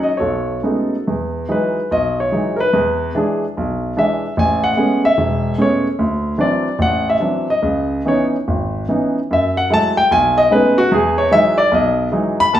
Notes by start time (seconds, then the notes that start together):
Already playing: A4 C#5
0.03 D#5
0.17 B1 F#4 A4 C#5
0.63 G#3 A3 B3 C#4 D#4
1.07 E2
1.49 E3 F#3 G#3 D#4 B4
1.91 B1 D#5
2.20 C#5
2.32 E3 F#3 G#3 D#4
2.56 A#4 B4
2.73 E2
3.15 E3 G#3 D4 G#4
3.57 B1
3.97 E3 G#3 D4 E5
4.37 A1 G#5
4.64 F#5
4.77 G#3 A3 B3 C#4
5.05 E5
5.18 E1
5.58 G#3 A3 B3 C#4 C#5
5.99 D2
6.38 E3 F#3 C4 D4 D5
6.79 A1 F#5
7.10 E5
7.20 E3 F#3 C4 D4
7.50 D#5
7.62 C#2
8.05 E3 B3 C#4 D#4 C#5
8.48 G#1
8.88 E3 B3 C#4 D#4
9.31 F#2 E5
9.57 F#5
9.70 F#3 G#3 A3 E4 A5
9.97 G5
10.11 B1 G#5
10.38 D#5
10.51 G#3 A3 B3 C#4 D#4 B4
10.78 F#4
10.92 E2 G#4
11.18 C#5
11.31 E3 F#3 G#3 D#4 E5
11.58 D5
11.72 B1 D#5
12.12 E3 F#3 G#3 D#4
12.40 B5
12.53 D#2 A5